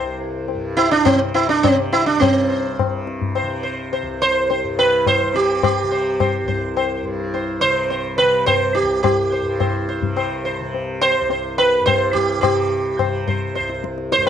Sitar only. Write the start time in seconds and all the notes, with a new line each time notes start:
Already playing: C5
0.77 E4
0.91 D4
1.05 C4
1.34 E4
1.49 D4
1.63 C4
1.93 E4
2.06 D4
2.20 C4 C5
2.49 C5
3.36 C5
3.63 C5
3.93 C5
4.22 C5
4.50 C5
4.79 B4
5.07 C5
5.36 G4
5.64 G4
5.91 C5
6.20 C5
6.48 C5
6.77 C5
7.34 C5
7.61 C5
7.90 C5
8.18 B4
8.46 C5
8.75 G4
9.03 G4
9.32 C5
9.60 C5
9.89 C5
10.16 C5
10.45 C5
11.01 C5
11.30 C5
11.58 B4
11.86 C5
12.13 G4
12.41 G4
12.99 C5
13.28 C5
13.55 C5
14.12 C5